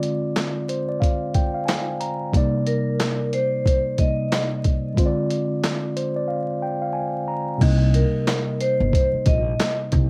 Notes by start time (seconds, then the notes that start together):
Already playing: D3 G#3 C4 F4 D5
0.03 closed hi-hat
0.36 snare, clap, closed hi-hat
0.69 C5, closed hi-hat
0.89 D5
1.00 F5, kick, closed hi-hat
1.34 G5, kick, closed hi-hat
1.54 F5
1.66 G#5, snare, clap, closed hi-hat
2.00 A#5, closed hi-hat
2.32 C3 G3 A#3 D#4, kick, closed hi-hat
2.37 D5
2.67 A#4, closed hi-hat
3.00 snare, clap, closed hi-hat
3.33 C5, closed hi-hat
3.66 kick, closed hi-hat
3.98 C3 G3 A#3 D#4 D#5, kick, closed hi-hat
4.32 snare, clap, closed hi-hat
4.64 kick, closed hi-hat
4.94 D3 G#3 C4 F4, kick, closed hi-hat
4.99 C5
5.06 D5
5.30 closed hi-hat
5.63 snare, clap, closed hi-hat
5.97 C5, closed hi-hat
6.16 D5
6.28 F5
6.62 G5
6.82 F5
6.93 G#5
7.28 A#5
7.58 C2 C3 G3 A#3 D#4, kick, closed hi-hat, crash
7.63 D#5
7.94 A#4, closed hi-hat
8.27 snare, clap, closed hi-hat
8.61 C5, closed hi-hat
8.80 G1
8.93 kick, closed hi-hat
9.13 muted upright bass stroke
9.26 A#1 D#5, kick, closed hi-hat
9.60 snare, clap, closed hi-hat
9.92 C2, kick, closed hi-hat